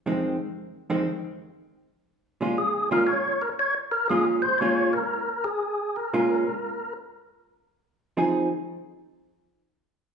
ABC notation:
X:1
M:4/4
L:1/8
Q:"Swing" 1/4=118
K:Bbdor
V:1 name="Tonewheel organ"
z8 | z2 A B d B d B | A c d B2 A2 B- | B3 z4 z |
z8 |]
V:2 name="Hollow-body jazz guitar" clef=bass
[F,,E,A,C] z2 [F,,E,A,C] z4 | z [B,,A,DF] z [B,,A,DF] z4 | [B,,A,DF] z [B,,A,DF] z4 z | [B,,A,DF] z6 z |
[F,CEA] z6 z |]